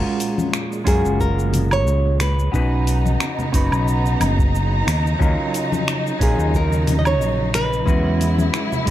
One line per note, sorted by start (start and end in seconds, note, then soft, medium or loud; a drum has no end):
0.00 2.51 A#2 medium
0.00 0.82 G#3 medium
0.00 2.50 G#3 medium
0.00 0.82 C#4 medium
0.00 0.83 F4 medium
0.00 0.83 F#4 medium
0.00 0.84 A#4 loud
0.20 open hi-hat medium
0.20 shaker medium
0.38 high conga medium
0.38 shaker soft
0.54 finger snap medium
0.54 shaker soft
0.72 shaker soft
0.84 1.01 F#2 loud
0.84 2.49 G#3 medium
0.84 2.49 C#4 medium
0.84 2.49 F4 medium
0.84 2.50 F#4 medium
0.84 1.18 G#4 medium
0.84 2.50 A#4 loud
0.84 kick loud
0.84 open hi-hat medium
0.84 shaker medium
1.04 1.86 F#1 medium
1.04 shaker soft
1.20 1.72 A#4 loud
1.20 kick medium
1.20 shaker soft
1.39 shaker soft
1.53 open hi-hat medium
1.53 high conga medium
1.53 low conga medium
1.53 shaker medium
1.71 2.17 C#5 loud
1.71 low woodblock medium
1.71 shaker soft
1.86 2.48 C#2 loud
1.86 shaker soft
2.20 4.17 B4 loud
2.20 finger snap medium
2.20 open hi-hat medium
2.20 shaker medium
2.39 shaker soft
2.52 3.15 B1 medium
2.52 8.90 C#3 medium
2.52 3.49 B3 loud
2.52 5.17 B3 medium
2.52 3.49 C#4 medium
2.52 7.82 D#4 medium
2.52 3.50 D#4 medium
2.52 3.50 F#4 medium
2.52 3.51 B4 loud
2.52 7.83 A#5 medium
2.52 kick loud
2.52 shaker soft
2.87 open hi-hat medium
2.87 shaker medium
3.06 high conga medium
3.06 shaker soft
3.20 finger snap medium
3.20 shaker soft
3.39 low conga medium
3.39 shaker soft
3.52 3.68 F#1 medium
3.52 5.16 B3 medium
3.52 5.16 C#4 medium
3.52 5.17 D#4 medium
3.52 5.17 F#4 medium
3.52 5.18 B4 loud
3.52 kick loud
3.52 open hi-hat medium
3.52 shaker medium
3.72 4.15 B1 medium
3.72 low woodblock medium
3.72 shaker soft
3.88 shaker soft
4.06 shaker soft
4.20 4.82 F#1 medium
4.20 open hi-hat medium
4.20 high conga medium
4.20 low woodblock medium
4.20 shaker medium
4.39 kick loud
4.39 shaker soft
4.55 shaker soft
4.87 5.14 D#2 medium
4.87 finger snap medium
4.87 open hi-hat medium
4.87 shaker medium
5.07 shaker soft
5.19 5.35 D#2 loud
5.19 6.16 F#3 medium
5.19 8.90 F#3 medium
5.19 6.16 C#4 medium
5.19 6.17 D#4 medium
5.19 6.17 F4 medium
5.19 6.17 A#4 loud
5.19 kick loud
5.19 shaker soft
5.54 open hi-hat medium
5.54 shaker medium
5.72 high conga medium
5.72 shaker soft
5.88 finger snap medium
5.88 shaker soft
6.07 shaker soft
6.19 6.35 A#1 loud
6.19 7.83 F#3 medium
6.19 7.83 C#4 medium
6.19 7.83 D#4 medium
6.19 7.84 F4 medium
6.19 6.56 G#4 medium
6.19 7.84 A#4 loud
6.19 kick loud
6.19 open hi-hat medium
6.19 shaker medium
6.38 7.20 D#2 medium
6.38 shaker soft
6.54 6.98 A#4 loud
6.54 kick medium
6.54 shaker soft
6.73 shaker soft
6.87 open hi-hat medium
6.87 high conga medium
6.87 low conga medium
6.87 shaker medium
6.99 7.06 D#5 medium
7.05 7.55 C#5 loud
7.05 low woodblock medium
7.05 shaker soft
7.20 7.82 A#1 loud
7.20 shaker soft
7.54 8.90 B4 loud
7.54 finger snap medium
7.54 open hi-hat medium
7.54 shaker medium
7.73 shaker soft
7.86 8.49 E2 loud
7.86 8.83 G#3 loud
7.86 8.90 G#3 medium
7.86 8.83 C#4 medium
7.86 8.83 E4 medium
7.86 8.90 E4 loud
7.86 8.84 F#4 medium
7.86 8.84 B4 loud
7.86 kick loud
7.86 shaker soft
8.21 open hi-hat medium
8.21 shaker medium
8.39 high conga medium
8.39 shaker soft
8.54 finger snap medium
8.54 shaker soft
8.72 low conga medium
8.72 shaker soft
8.86 8.90 E1 loud
8.86 8.90 G#3 medium
8.86 8.90 C#4 medium
8.86 8.90 E4 medium
8.86 kick loud
8.86 open hi-hat medium